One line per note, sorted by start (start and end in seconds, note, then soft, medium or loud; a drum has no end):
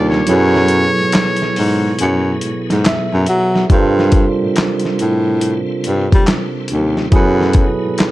0.00 0.22 D#2 medium
0.00 0.23 C3 medium
0.00 0.23 G3 medium
0.00 0.27 G3 soft
0.00 0.23 C4 medium
0.00 0.27 D4 soft
0.00 0.23 F4 medium
0.00 0.28 F4 soft
0.00 0.28 A4 soft
0.00 0.28 A#4 soft
0.00 0.28 D5 medium
0.10 2.63 C#5 loud
0.10 snare soft
0.26 0.88 F#2 loud
0.26 3.66 B2 medium
0.26 3.66 F#3 medium
0.26 3.66 B3 medium
0.26 3.66 E4 medium
0.26 3.67 G#4 medium
0.26 3.67 A4 medium
0.26 closed hi-hat medium
0.31 3.68 B4 medium
0.56 snare soft
0.68 closed hi-hat medium
1.00 1.05 G#2 soft
1.12 snare loud
1.12 clap medium
1.12 closed hi-hat medium
1.36 closed hi-hat soft
1.42 snare soft
1.56 1.94 G#2 medium
1.56 open hi-hat medium
1.99 2.37 F#2 medium
1.99 closed hi-hat medium
2.41 2.54 G#2 soft
2.41 closed hi-hat medium
2.70 2.83 G#2 medium
2.70 snare soft
2.70 closed hi-hat soft
2.85 2.97 F#2 soft
2.85 3.67 E5 medium
2.85 snare loud
2.85 clap medium
2.85 closed hi-hat medium
3.14 3.26 F#2 medium
3.26 3.65 F#3 medium
3.26 closed hi-hat medium
3.56 snare soft
3.69 4.30 G2 medium
3.69 7.09 C3 medium
3.69 7.09 G3 medium
3.69 7.09 C4 medium
3.69 7.09 D4 medium
3.69 7.09 F4 medium
3.69 7.10 A4 medium
3.69 kick loud
3.69 closed hi-hat medium
3.73 7.10 A#4 medium
3.73 7.11 C5 medium
3.99 snare soft
4.12 kick medium
4.12 closed hi-hat medium
4.43 4.48 A2 soft
4.56 snare loud
4.56 clap medium
4.56 closed hi-hat medium
4.80 closed hi-hat medium
4.85 snare soft
4.99 5.60 A2 medium
4.99 closed hi-hat medium
5.41 closed hi-hat medium
5.84 6.09 G2 medium
5.84 closed hi-hat medium
6.12 6.26 G3 loud
6.12 kick loud
6.12 closed hi-hat soft
6.27 snare loud
6.27 clap medium
6.27 closed hi-hat medium
6.68 closed hi-hat medium
6.72 7.08 D#2 medium
6.97 snare soft
7.11 7.73 F#2 loud
7.11 8.11 B2 medium
7.11 8.11 F#3 medium
7.11 8.11 B3 medium
7.11 8.11 E4 medium
7.11 8.11 G#4 medium
7.11 8.11 A4 medium
7.11 kick loud
7.11 closed hi-hat medium
7.16 8.11 B4 medium
7.41 snare soft
7.53 kick medium
7.53 closed hi-hat medium
7.85 7.91 G#2 soft
7.98 snare loud
7.98 clap medium
7.98 closed hi-hat medium